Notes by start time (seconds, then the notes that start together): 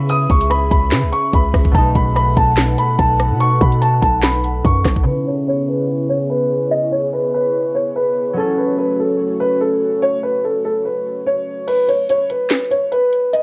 Already playing: C#3 B3 C#4 E4 G#4 B4 E5
0.09 D#6, closed hi-hat
0.30 C#2 C#6, kick, closed hi-hat
0.41 closed hi-hat
0.50 B5, cross-stick, closed hi-hat
0.71 C#2 B5, kick, closed hi-hat
0.91 C#3, snare, clap, closed hi-hat
1.03 C#2
1.12 C#6, closed hi-hat
1.33 C#2 B5, kick, closed hi-hat
1.54 C#2, kick, cross-stick, open hi-hat
1.65 kick
1.71 B1 B2 A3 D#4 A4 F#5 A5, kick, closed hi-hat
1.78 D#4
1.95 B1 B5, kick, closed hi-hat
2.16 B5, cross-stick, closed hi-hat
2.37 B1 A5, kick, closed hi-hat
2.57 snare, clap, closed hi-hat
2.78 B5, closed hi-hat
2.99 B1 A5, kick, closed hi-hat
3.20 cross-stick, closed hi-hat
3.31 B2
3.40 C#6, closed hi-hat
3.61 B2 B5, kick, closed hi-hat
3.72 closed hi-hat
3.82 A5, closed hi-hat
4.02 B1 A5, kick, closed hi-hat
4.22 B5, snare, clap, closed hi-hat
4.44 closed hi-hat
4.65 F#2 C#6, kick, closed hi-hat
4.85 B1, kick, cross-stick, snare
4.96 kick
5.03 C#3 B3 E4 G#4 B4 C#5
5.09 E4
5.27 C#5
5.48 C#5
5.68 B4
6.09 C#5
6.30 B4
6.71 D#5
6.92 C#5
7.13 B4
7.34 B4
7.75 C#5
7.96 B4
8.33 F#3 A3 C#4 F#4 A4
8.40 A4
8.58 B4
8.78 B4
8.99 A4
9.40 B4
9.61 A4
10.02 C#5
10.23 B4
10.44 A4
10.65 A4
10.85 B4
11.26 C#5
11.68 B4, closed hi-hat, crash
11.88 C#5, closed hi-hat
12.09 C#5, closed hi-hat
12.30 B4, closed hi-hat
12.50 snare, clap, closed hi-hat
12.58 closed hi-hat
12.64 closed hi-hat
12.71 C#5, closed hi-hat
12.92 B4, closed hi-hat
13.13 closed hi-hat
13.33 D#5, closed hi-hat